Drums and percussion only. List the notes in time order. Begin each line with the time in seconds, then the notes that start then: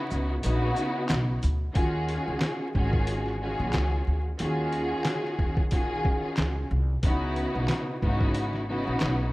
0.11 maracas, shaker
0.43 closed hi-hat, maracas
0.76 closed hi-hat, maracas, shaker
1.09 snare, clap, closed hi-hat, maracas
1.43 closed hi-hat, shaker, maracas
1.75 kick, closed hi-hat
2.09 closed hi-hat
2.40 snare, clap, closed hi-hat
2.75 kick
2.93 kick
3.07 closed hi-hat
3.26 snare
3.73 snare, clap, closed hi-hat
4.39 closed hi-hat
4.72 closed hi-hat
5.04 snare, clap, closed hi-hat
5.24 snare
5.39 kick
5.57 kick
5.71 kick, closed hi-hat
6.05 kick
6.37 snare, clap, closed hi-hat
7.03 kick, closed hi-hat
7.36 closed hi-hat
7.68 snare, clap, closed hi-hat
8.02 kick
8.21 kick
8.35 closed hi-hat
8.53 snare
9.00 snare, clap, closed hi-hat